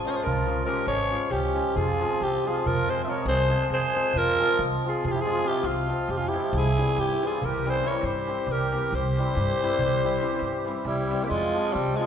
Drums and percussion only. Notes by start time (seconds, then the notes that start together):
0.08 darbuka tek
0.17 darbuka tek
0.27 darbuka dum
0.38 darbuka tek
0.49 darbuka tek
0.68 darbuka tek
0.77 darbuka tek
0.86 darbuka tek
0.99 darbuka tek
1.12 darbuka tek
1.22 darbuka tek
1.30 darbuka tek, darbuka dum
1.43 darbuka tek
1.55 darbuka tek
1.65 darbuka tek
1.76 darbuka dum
1.88 darbuka tek
2.02 darbuka tek
2.12 darbuka tek
2.21 darbuka tek
2.47 darbuka tek
2.66 darbuka dum
2.78 darbuka tek
2.88 darbuka tek
2.98 darbuka tek
3.16 darbuka tek
3.26 darbuka tek
3.51 darbuka tek
3.61 darbuka tek
3.70 darbuka tek, darbuka dum
3.95 darbuka tek
4.05 darbuka tek
4.13 darbuka dum
4.27 darbuka tek
4.39 darbuka tek
4.49 darbuka tek
4.59 darbuka tek
5.04 darbuka dum
5.16 darbuka tek
5.27 darbuka tek
5.37 darbuka tek
5.46 darbuka tek
5.56 darbuka tek
5.64 darbuka tek
5.90 darbuka tek
5.99 darbuka tek
6.08 darbuka tek, darbuka dum
6.34 darbuka tek
6.43 darbuka tek
6.53 darbuka dum
6.65 darbuka tek
6.77 darbuka tek
6.97 darbuka tek
7.23 darbuka tek
7.42 darbuka dum
7.55 darbuka tek
7.65 darbuka tek
7.83 darbuka tek
7.92 darbuka tek
8.01 darbuka tek
8.27 darbuka tek
8.37 darbuka tek
8.46 darbuka tek, darbuka dum
8.72 darbuka tek
8.82 darbuka tek
8.91 darbuka dum
9.05 darbuka tek
9.16 darbuka tek
9.35 darbuka tek
9.48 darbuka tek
9.60 darbuka tek
9.70 darbuka tek
9.79 darbuka dum
9.90 darbuka tek
10.11 darbuka tek
10.20 darbuka tek
10.39 darbuka tek
10.52 darbuka tek
10.65 darbuka tek
10.75 darbuka tek
10.85 darbuka tek, darbuka dum
10.98 darbuka tek
11.11 darbuka tek
11.21 darbuka tek